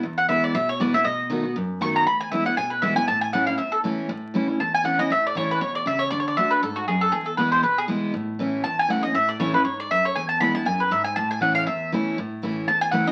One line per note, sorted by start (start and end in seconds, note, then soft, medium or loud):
0.03 0.52 E2 medium
0.18 0.28 F#5 medium
0.29 0.53 E3 medium
0.29 0.53 G#3 medium
0.29 0.54 B3 medium
0.29 0.54 E4 medium
0.29 0.42 E5 medium
0.44 0.55 D5 medium
0.55 1.03 B2 medium
0.55 0.68 E5 loud
0.69 0.80 C#5 medium
0.80 0.93 E3 medium
0.80 0.93 G#3 medium
0.80 0.94 B3 loud
0.80 0.93 E4 medium
0.80 0.94 D5 medium
0.94 1.06 B3 soft
0.94 1.05 E4 medium
0.94 1.05 E5 loud
1.04 1.54 B2 medium
1.04 1.52 D#5 medium
1.30 1.44 D#3 medium
1.30 1.44 A3 medium
1.30 1.44 B3 loud
1.30 1.42 F#4 medium
1.44 1.56 B3 soft
1.44 1.55 F#4 medium
1.56 2.05 F#2 medium
1.81 2.06 D#3 medium
1.81 2.06 A3 medium
1.81 2.06 B3 loud
1.81 2.06 F#4 loud
1.81 1.95 C#6 loud
1.96 2.06 A#5 loud
2.07 2.55 E2 medium
2.07 2.20 B5 loud
2.20 2.31 G#5 medium
2.31 2.45 E3 medium
2.31 2.46 G#3 medium
2.31 2.45 B3 medium
2.31 2.44 E4 loud
2.31 2.45 E5 medium
2.45 2.57 B3 soft
2.45 2.57 E4 medium
2.45 2.57 F#5 medium
2.57 3.06 B2 medium
2.57 2.71 G#5 loud
2.70 2.82 B4 medium
2.82 2.96 E3 medium
2.82 2.96 G#3 loud
2.82 2.96 B3 loud
2.82 2.95 E4 loud
2.82 2.96 E5 medium
2.96 3.08 B3 medium
2.96 3.07 E4 medium
2.96 3.07 G#5 loud
3.08 3.57 A2 medium
3.08 3.21 A5 loud
3.21 3.33 G#5 loud
3.33 3.47 E3 medium
3.33 3.47 A3 medium
3.33 3.48 C#4 medium
3.33 3.47 E4 medium
3.33 3.46 F#5 medium
3.47 3.60 C#4 soft
3.47 3.59 E4 medium
3.47 3.57 F5 medium
3.58 4.07 E2 medium
3.58 3.72 E5 medium
3.72 3.79 A4 medium
3.84 4.08 E3 medium
3.84 4.09 A3 medium
3.84 4.09 C#4 medium
3.84 4.09 E4 medium
4.09 4.58 A2 medium
4.34 4.48 E3 medium
4.34 4.48 A3 medium
4.34 4.48 C#4 medium
4.34 4.46 E4 loud
4.47 4.60 C#4 medium
4.47 4.59 E4 medium
4.60 5.08 E2 medium
4.60 4.74 A5 medium
4.74 4.84 G#5 loud
4.84 4.98 E3 medium
4.84 4.98 A3 medium
4.84 4.99 C#4 loud
4.84 4.97 E4 loud
4.84 4.99 F#5 medium
4.99 5.11 C#4 soft
4.99 5.10 E4 medium
4.99 5.10 D#5 loud
5.10 5.59 A2 medium
5.10 5.25 E5 medium
5.27 5.37 D5 medium
5.35 5.60 E3 medium
5.35 5.60 A3 medium
5.35 5.61 C#4 medium
5.35 5.61 E4 medium
5.35 5.50 C#5 medium
5.51 5.61 B4 medium
5.61 5.85 B2 medium
5.61 5.75 C#5 medium
5.75 5.86 D5 medium
5.86 6.10 C#3 medium
5.86 6.00 E5 loud
5.99 6.10 C#5 medium
6.10 6.36 D3 medium
6.10 6.19 D5 loud
6.20 6.27 C#5 medium
6.28 6.36 D5 medium
6.37 6.61 D3 medium
6.37 6.61 A3 medium
6.37 6.62 D4 medium
6.37 6.62 F#4 medium
6.37 6.50 E5 loud
6.51 6.62 B4 medium
6.63 6.86 G#2 medium
6.63 6.76 A4 medium
6.76 6.87 F#4 medium
6.88 7.12 F#2 medium
6.88 7.01 G#4 medium
7.01 7.12 A4 loud
7.12 7.61 E2 medium
7.12 7.26 G#4 medium
7.26 7.37 A4 medium
7.37 7.62 E3 medium
7.37 7.62 G#3 medium
7.37 7.62 B3 loud
7.37 7.63 E4 loud
7.37 7.51 B4 medium
7.52 7.63 C5 loud
7.63 8.11 B2 medium
7.63 7.77 B4 medium
7.78 7.85 G#4 medium
7.88 8.12 E3 medium
7.88 8.12 G#3 medium
7.88 8.13 B3 medium
7.88 8.13 E4 loud
8.14 8.62 A2 medium
8.39 8.63 E3 medium
8.39 8.64 A3 medium
8.39 8.64 C#4 medium
8.39 8.64 E4 medium
8.64 9.13 E2 medium
8.64 8.77 A5 medium
8.79 8.90 G#5 loud
8.88 9.02 E3 medium
8.88 9.03 A3 medium
8.88 9.03 C#4 loud
8.88 9.03 E4 loud
8.88 9.03 F#5 medium
9.03 9.15 C#4 soft
9.03 9.15 E4 medium
9.03 9.14 D#5 loud
9.14 9.63 A2 medium
9.14 9.28 E5 loud
9.29 9.40 D5 medium
9.39 9.53 E3 medium
9.39 9.53 A3 medium
9.39 9.54 C#4 medium
9.39 9.52 E4 loud
9.39 9.53 C#5 medium
9.54 9.66 C#4 soft
9.54 9.65 E4 medium
9.54 9.64 B4 medium
9.64 9.89 G#2 medium
9.64 9.78 C#5 medium
9.80 9.90 D5 medium
9.91 10.15 F#2 medium
9.91 10.04 E5 loud
10.05 10.16 C#5 medium
10.16 10.64 E2 medium
10.16 10.28 G#5 medium
10.29 10.40 A5 medium
10.40 10.54 E3 medium
10.40 10.54 G#3 medium
10.40 10.55 B3 medium
10.40 10.53 E4 loud
10.40 10.54 B5 loud
10.54 10.66 B3 soft
10.54 10.66 E4 medium
10.54 10.66 A5 loud
10.65 10.90 F#2 medium
10.65 10.80 G#5 medium
10.80 10.91 B4 medium
10.91 11.15 G#2 medium
10.91 11.04 E5 medium
11.04 11.16 G#5 loud
11.16 11.65 A2 medium
11.16 11.30 A5 loud
11.31 11.41 G#5 medium
11.41 11.65 E3 medium
11.41 11.66 A3 medium
11.41 11.66 C#4 medium
11.41 11.66 E4 loud
11.41 11.54 F#5 medium
11.55 11.66 F5 medium
11.67 12.15 E2 medium
11.67 11.90 E5 medium
11.92 12.16 E3 medium
11.92 12.17 A3 loud
11.92 12.17 C#4 loud
11.92 12.17 E4 loud
12.18 12.66 A2 medium
12.43 12.67 E3 medium
12.43 12.67 A3 medium
12.43 12.67 C#4 medium
12.43 12.68 E4 medium
12.68 13.12 E2 medium
12.68 12.81 A5 medium
12.81 12.91 G#5 loud
12.91 13.06 E3 loud
12.91 13.07 A3 medium
12.91 13.07 C#4 loud
12.91 13.06 E4 loud
12.91 13.06 F#5 medium
13.07 13.12 C#4 soft
13.07 13.12 E4 medium
13.07 13.12 D#5 loud